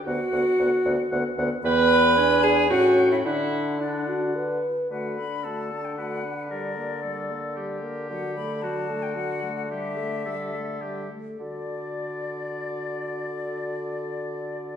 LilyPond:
<<
  \new Staff \with { instrumentName = "Flute" } { \time 3/4 \key d \major \tempo 4 = 111 fis''2~ fis''8 r8 | b''4. gis''8 fis''8. e''16 | e''4 d''4 r4 | fis''8 b''8 a''8. g''16 fis''8. fis''16 |
d''2~ d''8 r8 | fis''8 b''8 a''8. g''16 fis''8. fis''16 | e''2~ e''8 r8 | d''2.~ |
d''2. | }
  \new Staff \with { instrumentName = "Oboe" } { \time 3/4 \key d \major fis''8 fis''8 fis''8 fis''8 fis''8 fis''8 | g''4 gis''4 g''4 | fis''4 fis''4. r8 | b'4 a'4 b'4 |
bes'4 a'4 g'4~ | g'4 fis'2 | g'4 a'4 g'8 r8 | d''2.~ |
d''2. | }
  \new Staff \with { instrumentName = "Clarinet" } { \time 3/4 \key d \major fis'2~ fis'8 r8 | b'4. gis'8 fis'8. e'16 | e'4 d'4 r4 | fis'8 a'8 fis'8 a'8 fis'8 a'8 |
g'8 bes'8 g'8 bes'8 g'8 bes'8 | fis'8 a'8 fis'8 a'8 fis'8 a'8 | g'8 a'8 g'8 a'8 g'8 a'8 | a'2.~ |
a'2. | }
  \new Staff \with { instrumentName = "French horn" } { \time 3/4 \key d \major b8 b8 b8 b8 b8 b8 | b4 d'4 cis'4 | d'4 d'8 fis'8 b'4 | a8 d'8 a8 d'8 a8 d'8 |
g8 bes8 g8 bes8 g8 bes8 | fis8 a8 fis8 a8 fis8 a8 | g8 a8 g8 a8 g8 a8 | fis'2.~ |
fis'2. | }
  \new Staff \with { instrumentName = "Bassoon" } { \clef bass \time 3/4 \key d \major d,8 d,8 d,8 d,8 d,8 d,8 | e,2 a,4 | d2~ d8 r8 | d2.~ |
d2. | d2.~ | d2~ d8 r8 | d2.~ |
d2. | }
>>